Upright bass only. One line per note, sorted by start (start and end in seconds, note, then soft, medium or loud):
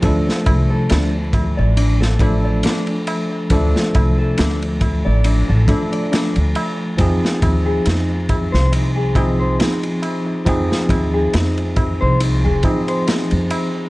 0.03 0.24 D2 medium
0.47 0.86 C2 medium
0.91 1.53 D2 medium
1.59 2.61 A1 medium
3.51 3.72 D2 medium
3.95 4.34 C2 medium
4.39 5.01 D2 medium
5.06 5.44 A1 medium
5.50 5.66 A1 medium
6.37 6.53 D2 medium
6.99 7.20 F2 medium
7.43 7.81 D#2 medium
7.87 8.49 F2 medium
8.54 9.56 C2 medium
10.47 10.68 F2 medium
10.90 11.29 D#2 medium
11.34 11.97 F2 medium
12.02 12.47 C2 medium
12.45 12.62 F1 medium
13.32 13.49 F2 medium